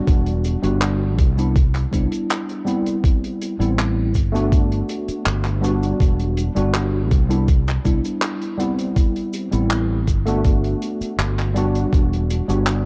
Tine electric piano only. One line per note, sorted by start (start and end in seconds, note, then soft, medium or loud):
0.00 0.58 G3 loud
0.00 0.59 B3 medium
0.00 0.59 D4 medium
0.00 0.60 F#4 loud
0.62 1.16 G3 medium
0.62 1.16 B3 medium
0.62 1.16 D4 medium
0.62 1.17 F#4 loud
1.37 1.54 G3 medium
1.37 1.54 B3 medium
1.37 1.54 D4 medium
1.37 1.55 E4 medium
1.91 2.62 G3 medium
1.91 2.62 B3 medium
1.91 2.63 D4 medium
1.91 2.63 E4 medium
2.65 3.54 G3 medium
2.65 3.55 B3 medium
2.65 3.55 C4 medium
2.65 3.56 E4 loud
3.59 4.12 G3 medium
3.59 4.13 B3 medium
3.59 4.13 C4 medium
3.59 4.13 E4 medium
4.32 5.58 A3 loud
4.32 5.58 B3 medium
4.32 5.59 D4 medium
4.32 5.59 F#4 loud
5.61 6.51 G3 loud
5.61 6.51 B3 medium
5.61 6.52 D4 medium
5.61 6.52 F#4 loud
6.55 7.08 G3 medium
6.55 7.09 B3 medium
6.55 7.09 D4 medium
6.55 7.09 F#4 loud
7.29 7.46 G3 medium
7.29 7.46 B3 medium
7.29 7.46 D4 medium
7.29 7.47 E4 loud
7.84 8.55 G3 medium
7.84 8.55 B3 medium
7.84 8.55 D4 medium
7.84 8.55 E4 medium
8.57 9.47 G3 medium
8.57 9.48 B3 medium
8.57 9.48 C4 medium
8.57 9.49 E4 loud
9.51 10.05 G3 medium
9.51 10.05 B3 medium
9.51 10.05 C4 medium
9.51 10.06 E4 medium
10.26 11.51 A3 loud
10.26 11.51 B3 medium
10.26 11.52 D4 medium
10.26 11.52 F#4 loud
11.54 12.44 G3 loud
11.54 12.44 B3 medium
11.54 12.45 D4 medium
11.54 12.45 F#4 loud
12.48 12.85 G3 medium
12.48 12.85 B3 medium
12.48 12.85 D4 medium
12.48 12.85 F#4 loud